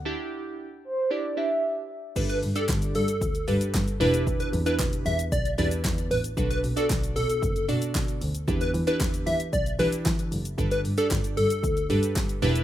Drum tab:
CC |----------------|x---------------|----------------|----------------|
HH |----------------|-xox-xox-xox-xox|-xox-xox-xox-xox|-xox-xox-xox-xox|
SH |----------------|xxxxxxxxxxxxxxxx|xxxxxxxxxxxxxxxx|xxxxxxxxxxxxxxxx|
CP |----------------|----x-------x---|----x-------x---|----x-------x---|
SD |----------------|----o-------o---|----o-------o---|----o-------o---|
BD |----------------|o---o---o---o---|o---o---o---o---|o---o---o---o---|

CC |----------------|----------------|
HH |-xox-xox-xox-xox|-xox-xox-xox-xox|
SH |xxxxxxxxxxxxxxxx|xxxxxxxxxxxxxxxx|
CP |----x-------x---|----x-------x---|
SD |----o-------o---|----o-------o---|
BD |o---o---o---o---|o---o---o---o---|